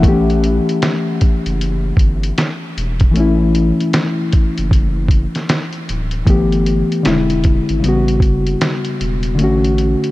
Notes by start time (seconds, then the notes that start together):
0.00 A1 E3 A3, kick, closed hi-hat
0.05 B3 G4
0.12 C#4
0.30 closed hi-hat
0.44 closed hi-hat
0.69 closed hi-hat
0.82 snare, closed hi-hat
1.21 kick, closed hi-hat
1.46 F#1, closed hi-hat
1.61 closed hi-hat
1.97 G1, kick, closed hi-hat
2.23 closed hi-hat
2.38 snare, closed hi-hat
2.77 E1, closed hi-hat
3.00 kick, closed hi-hat
3.11 E3 A3
3.16 A1 C#4, closed hi-hat
3.20 E4
3.55 closed hi-hat
3.80 closed hi-hat
3.93 snare, closed hi-hat
4.33 kick, closed hi-hat
4.58 F#1, closed hi-hat
4.71 kick, closed hi-hat
5.09 kick, closed hi-hat
5.35 snare, closed hi-hat
5.49 snare, closed hi-hat
5.73 closed hi-hat
5.89 D1, closed hi-hat
6.11 closed hi-hat
6.25 G1 E3 A3 B3, kick, closed hi-hat
6.30 G4
6.52 closed hi-hat
6.66 closed hi-hat
6.92 closed hi-hat
7.03 E1 D3 G#3 C4, snare, closed hi-hat
7.07 E4
7.30 closed hi-hat
7.44 kick, closed hi-hat
7.69 G#1, closed hi-hat
7.80 C#3 G3
7.84 A1 B3, closed hi-hat
7.88 F#4
8.08 closed hi-hat
8.20 F#1, kick, closed hi-hat
8.47 closed hi-hat
8.61 snare, closed hi-hat
8.85 closed hi-hat
9.01 E1, closed hi-hat
9.23 closed hi-hat
9.35 D3 A3, closed hi-hat
9.40 A1 C#4 F#4
9.64 closed hi-hat
9.78 closed hi-hat
10.04 closed hi-hat